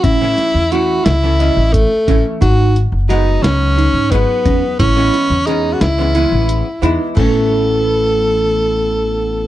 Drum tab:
CC |-------|-------|-------|x------|
HH |xxxxxxx|xxxxxxx|xxxxxxx|-------|
SD |-o-o---|--oo---|-o-o---|-------|
BD |o----oo|o----oo|o------|o------|